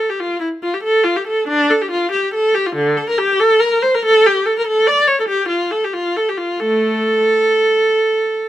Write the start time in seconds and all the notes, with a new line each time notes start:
0.10 G4
0.20 F4
0.40 E4
0.63 F4
0.74 G4
0.83 A4
1.04 F4
1.16 G4
1.27 A4
1.48 D4
1.70 A4
1.82 G4
1.91 F4
2.11 G4
2.34 A4
2.55 G4
2.66 F4
2.75 D3
2.97 A4
3.09 A#4
3.18 G4
3.40 A4
3.60 A#4
3.83 C5
3.95 A#4
4.05 A4
4.26 G4
4.46 A4
4.59 A#4
4.67 A4
4.88 D5
5.08 C#5
5.20 A4
5.29 G4
5.49 F4
5.71 A4
5.85 G4
5.94 F4
6.17 A4
6.29 G4
6.38 F4
6.60 A3 A4